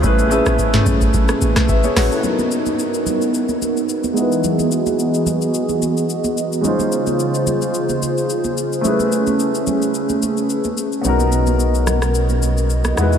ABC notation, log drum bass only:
X:1
M:4/4
L:1/16
Q:"Swing 16ths" 1/4=109
K:B
V:1 name="Log drum bass" clef=bass
=A,,,3 A,,,3 A,,,2 A,,, z A,,, B,,, A,,, z A,,, z | z16 | z16 | z16 |
z16 | z16 |]